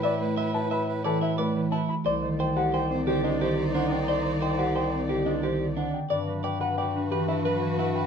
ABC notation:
X:1
M:6/4
L:1/8
Q:1/4=178
K:Clyd
V:1 name="Grand piano"
d z b a b z A e B z a b | d z g f g z G _e c z f g | d z g f g z G _e c z f g | d z g f g z G e B z f g |]
V:2 name="Soprano saxophone"
B B B B B B B B B B B z | c c c c c c c c c c c c | c c c c c c c c c c c z | B B B B B B B B B B B B |]
V:3 name="Clean electric guitar"
e z e z e z d E d z E z | c z c G c z G D G z D z | c z c G c z G D G z D z | d z d B d z B E B z E z |]
V:4 name="Violin section"
[EB]8- [EB]3 z | [_Ed]12- | [_Ed]8- [Ed]3 z | [FB]12 |]
V:5 name="Marimba" clef=bass
z A, z4 E, z A, E, z2 | z _E, z3 C D, z E, D, z2 | z _E, z3 C D, z E, D, z2 | z F, z3 D E, z F, E, z2 |]
V:6 name="Bass clarinet" clef=bass
A,,12 | C,,12- | C,,12 | G,,12 |]